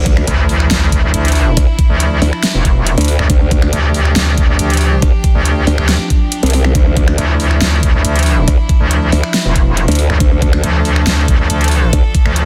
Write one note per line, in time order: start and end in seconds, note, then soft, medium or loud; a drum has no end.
0.00 0.26 D2 medium
0.00 12.45 F3 medium
0.00 12.45 D4 medium
0.00 3.28 E4 medium
0.00 impact medium
0.06 kick loud
0.06 closed hi-hat medium
0.17 finger snap medium
0.27 0.69 D2 medium
0.27 closed hi-hat medium
0.49 open hi-hat medium
0.60 finger snap soft
0.71 1.02 D2 loud
0.71 snare loud
0.71 closed hi-hat medium
0.92 kick medium
0.92 closed hi-hat medium
1.03 1.12 D2 loud
1.14 1.55 D2 loud
1.14 closed hi-hat medium
1.25 closed hi-hat medium
1.28 closed hi-hat medium
1.32 closed hi-hat medium
1.32 open hi-hat loud
1.57 1.66 D2 loud
1.57 kick loud
1.57 closed hi-hat medium
1.79 kick loud
1.79 closed hi-hat medium
1.90 2.20 D2 medium
2.00 closed hi-hat medium
2.22 2.31 D2 loud
2.22 open hi-hat medium
2.33 finger snap soft
2.43 snare loud
2.43 closed hi-hat medium
2.54 2.96 E1 loud
2.65 kick medium
2.65 closed hi-hat medium
2.87 closed hi-hat medium
2.98 3.17 D2 medium
2.98 closed hi-hat soft
3.01 closed hi-hat medium
3.05 closed hi-hat medium
3.05 open hi-hat loud
3.19 3.28 D2 loud
3.19 finger snap soft
3.30 3.71 D2 loud
3.30 6.74 G4 medium
3.30 kick loud
3.30 closed hi-hat medium
3.51 kick loud
3.51 closed hi-hat medium
3.62 finger snap medium
3.73 4.14 D2 medium
3.73 closed hi-hat medium
3.94 open hi-hat medium
4.05 finger snap medium
4.16 4.47 D2 medium
4.16 snare loud
4.16 closed hi-hat medium
4.38 kick medium
4.38 closed hi-hat medium
4.49 4.58 D2 loud
4.59 5.01 D2 loud
4.59 closed hi-hat medium
4.70 closed hi-hat soft
4.74 closed hi-hat medium
4.77 closed hi-hat medium
4.77 open hi-hat medium
5.02 5.12 D2 loud
5.02 kick loud
5.02 closed hi-hat medium
5.24 kick loud
5.24 closed hi-hat soft
5.35 5.65 D2 loud
5.45 closed hi-hat medium
5.67 5.76 D2 loud
5.67 open hi-hat medium
5.78 5.98 D2 medium
5.78 finger snap soft
5.89 snare loud
5.89 closed hi-hat medium
6.10 kick medium
6.10 closed hi-hat medium
6.32 closed hi-hat medium
6.43 6.73 C2 loud
6.43 closed hi-hat soft
6.46 closed hi-hat medium
6.50 closed hi-hat medium
6.50 open hi-hat medium
6.64 finger snap medium
6.75 7.16 D2 loud
6.75 10.19 E4 medium
6.75 kick loud
6.75 closed hi-hat medium
6.97 kick loud
6.97 closed hi-hat soft
7.08 finger snap medium
7.18 7.60 D2 medium
7.18 closed hi-hat medium
7.40 open hi-hat medium
7.51 finger snap medium
7.61 7.92 D2 loud
7.61 snare loud
7.61 closed hi-hat medium
7.83 kick medium
7.83 closed hi-hat medium
7.94 8.03 D2 loud
8.05 8.46 D2 loud
8.05 closed hi-hat medium
8.16 closed hi-hat soft
8.19 closed hi-hat medium
8.23 closed hi-hat medium
8.23 open hi-hat medium
8.48 8.57 D2 loud
8.48 kick loud
8.48 closed hi-hat medium
8.69 kick loud
8.69 closed hi-hat soft
8.80 9.11 D2 loud
8.91 closed hi-hat medium
9.12 9.22 D2 loud
9.12 open hi-hat medium
9.23 finger snap medium
9.34 snare loud
9.34 closed hi-hat medium
9.45 9.87 E1 loud
9.56 kick medium
9.56 closed hi-hat medium
9.77 closed hi-hat medium
9.88 10.08 D2 loud
9.88 closed hi-hat soft
9.92 closed hi-hat medium
9.95 closed hi-hat medium
9.95 open hi-hat medium
10.10 10.19 D2 loud
10.10 finger snap medium
10.20 10.62 D2 loud
10.20 12.45 A4 medium
10.20 kick loud
10.20 closed hi-hat medium
10.42 kick loud
10.42 closed hi-hat medium
10.53 finger snap medium
10.64 11.05 D2 medium
10.64 closed hi-hat medium
10.85 open hi-hat medium
10.96 finger snap medium
11.07 11.38 D2 loud
11.07 snare loud
11.07 closed hi-hat medium
11.28 kick medium
11.28 closed hi-hat medium
11.39 11.48 D2 loud
11.50 11.91 D2 loud
11.50 closed hi-hat medium
11.61 closed hi-hat soft
11.64 closed hi-hat medium
11.68 closed hi-hat medium
11.68 open hi-hat medium
11.93 12.02 D2 loud
11.93 kick loud
11.93 closed hi-hat medium
12.15 kick loud
12.15 closed hi-hat medium
12.26 12.45 D2 medium
12.26 finger snap medium
12.36 closed hi-hat medium